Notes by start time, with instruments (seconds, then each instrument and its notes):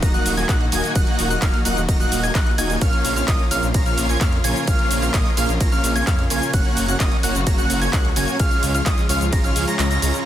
Already playing: string section D#3 F#3 A#3 F#4
0.02 detuned saw bass D#1, supersaw synth A#3 D#4 F#4 D#5 A#5, digital synth lead A#6, kick, closed hi-hat, ride, cabasa
0.14 supersaw synth A#3 D#4 F#4 D#5 F#5, digital synth lead F#6, closed hi-hat, cabasa
0.26 detuned saw bass D#1, open hi-hat, cabasa
0.37 supersaw synth A#3 D#4 F#4 D#5 G#5, digital synth lead G#6, closed hi-hat, cabasa
0.49 detuned saw bass A#1, supersaw synth A#3 D#4 F#4 F#5, digital synth lead F#6, kick, clap, closed hi-hat, ride, cabasa
0.61 closed hi-hat
0.72 detuned saw bass D#1, supersaw synth A#3 D#4 F#4 D#5 G#5, digital synth lead G#6, open hi-hat, cabasa
0.84 closed hi-hat, cabasa
0.95 detuned saw bass D#1, supersaw synth A#3 D#4 F#4 D#5 F#5, digital synth lead F#6, kick, closed hi-hat, ride, cabasa
1.07 closed hi-hat
1.19 detuned saw bass D#1, open hi-hat, cabasa
1.30 supersaw synth A#3 D#4 F#4 D#5 F#5, digital synth lead F#6, closed hi-hat, cabasa
1.42 detuned saw bass D#1, supersaw synth A#3 D#4 F#4, digital synth lead F6, kick, clap, closed hi-hat, ride, cabasa
1.54 closed hi-hat
1.65 detuned saw bass D#1, supersaw synth A#3 D#4 F#4 D#5 F#5, digital synth lead F#6, open hi-hat, cabasa
1.77 detuned saw bass D#1, closed hi-hat, cabasa
1.89 detuned saw bass D#1, supersaw synth A#3 D#4 F#4 D#5 A#5, digital synth lead A#6, kick, closed hi-hat, ride, cabasa
2.00 supersaw synth A#3 D#4 F#4 D#5 F#5, digital synth lead F#6, closed hi-hat, cabasa
2.12 detuned saw bass D#1, open hi-hat, cabasa
2.23 supersaw synth A#3 D#4 F#4 D#5 G#5, digital synth lead G#6, closed hi-hat, cabasa
2.35 detuned saw bass A#1, supersaw synth D#4 F#4 D#5 F#5, digital synth lead F#6, kick, clap, closed hi-hat, ride, cabasa
2.47 closed hi-hat
2.58 detuned saw bass D#1, supersaw synth A#3 D#4 F#4 D#5 G#5, digital synth lead G#6, open hi-hat, cabasa
2.70 closed hi-hat, cabasa
2.81 detuned saw bass A#1, string section C#3 F3 F4, supersaw synth A#3 C#4 F4 C#5 F5, digital synth lead F6, kick, closed hi-hat, ride, cabasa
2.93 closed hi-hat
3.05 detuned saw bass A#1, open hi-hat, cabasa
3.16 supersaw synth A#3 C#4 F4 C#5 F5, digital synth lead F6, closed hi-hat, cabasa
3.28 detuned saw bass A#1, supersaw synth A#3 C#4 F4, digital synth lead D#6, kick, clap, closed hi-hat, ride, cabasa
3.39 closed hi-hat
3.51 detuned saw bass A#1, supersaw synth A#3 C#4 F4 C#5 F5, digital synth lead F6, open hi-hat, cabasa
3.63 detuned saw bass A#1, closed hi-hat, cabasa
3.74 detuned saw bass A#1, supersaw synth A#3 C#4 F4 C#5 A#5, digital synth lead A#6, kick, closed hi-hat, ride, cabasa
3.86 supersaw synth A#3 C#4 F4 C#5 F5, digital synth lead F6, closed hi-hat, cabasa
3.98 detuned saw bass A#1, open hi-hat, cabasa
4.09 supersaw synth A#3 C#4 F4 C#5 G#5, digital synth lead G#6, closed hi-hat, cabasa
4.21 detuned saw bass F2, supersaw synth A#3 C#4 F4 C#5 F5, digital synth lead F6, kick, clap, closed hi-hat, ride, cabasa
4.32 closed hi-hat
4.44 detuned saw bass A#1, supersaw synth A#3 C#4 F4 C#5 G#5, digital synth lead G#6, open hi-hat, cabasa
4.56 closed hi-hat, cabasa
4.67 detuned saw bass A#1, supersaw synth A#3 C#4 F4 C#5 F5, digital synth lead F6, kick, closed hi-hat, ride, cabasa
4.79 closed hi-hat
4.91 detuned saw bass A#1, open hi-hat, cabasa
5.02 supersaw synth A#3 C#4 F4 C#5 F5, digital synth lead F6, closed hi-hat, cabasa
5.14 detuned saw bass A#1, supersaw synth A#3 C#4 F4 C#5 D#5, digital synth lead D#6, kick, clap, closed hi-hat, ride, cabasa
5.26 closed hi-hat
5.37 detuned saw bass A#1, supersaw synth A#3 C#4 F4 C#5 F5, digital synth lead F6, open hi-hat, cabasa
5.49 detuned saw bass A#1, closed hi-hat, cabasa
5.61 detuned saw bass A#1, supersaw synth A#3 C#4 F4 C#5 A#5, digital synth lead A#6, kick, closed hi-hat, ride, cabasa
5.72 supersaw synth A#3 C#4 F4 C#5 F5, digital synth lead F6, closed hi-hat, cabasa
5.84 detuned saw bass A#1, open hi-hat, cabasa
5.96 supersaw synth A#3 C#4 F4 C#5 G#5, digital synth lead G#6, closed hi-hat, cabasa
6.07 detuned saw bass F2, supersaw synth A#3 C#4 F4 C#5 F5, digital synth lead F6, kick, clap, closed hi-hat, ride, cabasa
6.19 closed hi-hat
6.30 detuned saw bass A#1, supersaw synth A#3 C#4 F4 C#5 G#5, digital synth lead G#6, open hi-hat, cabasa
6.42 closed hi-hat, cabasa
6.54 detuned saw bass F#1, string section F#3 F#4, supersaw synth A#3 F#4 F#5, digital synth lead F#6, kick, closed hi-hat, ride, cabasa
6.65 closed hi-hat
6.77 detuned saw bass F#1, open hi-hat, cabasa
6.88 supersaw synth A#3 C#4 F#4 C#5 F#5, digital synth lead F#6, closed hi-hat, cabasa
7.00 detuned saw bass F#1, supersaw synth A#3 C#4 F#4 C#5 D#5, digital synth lead D#6, kick, clap, closed hi-hat, ride, cabasa
7.12 closed hi-hat
7.23 detuned saw bass F#1, supersaw synth A#3 C#4 F#4 C#5 F#5, digital synth lead F#6, open hi-hat, cabasa
7.35 detuned saw bass F#1, closed hi-hat, cabasa
7.47 detuned saw bass F#1, supersaw synth A#3 C#4 F#4 C#5 A#5, digital synth lead A#6, kick, closed hi-hat, ride, cabasa
7.58 supersaw synth A#3 C#4 F#4 C#5 F#5, digital synth lead F#6, closed hi-hat, cabasa
7.70 detuned saw bass F#1, open hi-hat, cabasa
7.82 supersaw synth A#3 C#4 F#4 C#5 G#5, digital synth lead G#6, closed hi-hat, cabasa
7.93 detuned saw bass C#2, supersaw synth A#3 C#4 F#4 C#5 F#5, digital synth lead F#6, kick, clap, closed hi-hat, ride, cabasa
8.05 closed hi-hat
8.16 detuned saw bass F#1, supersaw synth A#3 C#4 F#4 C#5 G#5, digital synth lead G#6, open hi-hat, cabasa
8.28 closed hi-hat, cabasa
8.40 detuned saw bass C#2, string section F3 G#3 F4, supersaw synth G#3 C#4, digital synth lead F6, kick, closed hi-hat, ride, cabasa
8.51 closed hi-hat, cabasa
8.63 detuned saw bass C#2, open hi-hat, cabasa
8.74 supersaw synth G#3 C#4 F4 C#5 F5, digital synth lead F6, closed hi-hat, cabasa
8.86 detuned saw bass C#2, supersaw synth G#3 C#4 F4 C#5 D#5, digital synth lead D#6, kick, clap, closed hi-hat, ride, cabasa
8.98 closed hi-hat, cabasa
9.09 detuned saw bass C#2, supersaw synth G#3 C#4 F4 C#5 F5, digital synth lead F6, open hi-hat, cabasa
9.21 detuned saw bass C#2, closed hi-hat, cabasa
9.33 detuned saw bass G#1, supersaw synth G#3 C#4 F4 C#5 A#5, digital synth lead A#6, kick, closed hi-hat, ride, cabasa
9.44 supersaw synth G#3 C#4 F4 C#5 F5, digital synth lead F6, closed hi-hat, cabasa
9.56 detuned saw bass C#2, open hi-hat, cabasa
9.68 supersaw synth G#3 C#4 F4 C#5 A#5, digital synth lead A#6, closed hi-hat, cabasa
9.79 detuned saw bass C#2, supersaw synth G#3 C#4 F4 C#5 A#5, digital synth lead A#6, clap, closed hi-hat, ride, cabasa
9.91 supersaw synth G#3 C#4 F4 C#5 A#5, digital synth lead A#6, closed hi-hat, cabasa
10.02 detuned saw bass C#2, supersaw synth G#3 C#4 F4 C#5 A#5, digital synth lead A#6, open hi-hat, cabasa
10.14 closed hi-hat, cabasa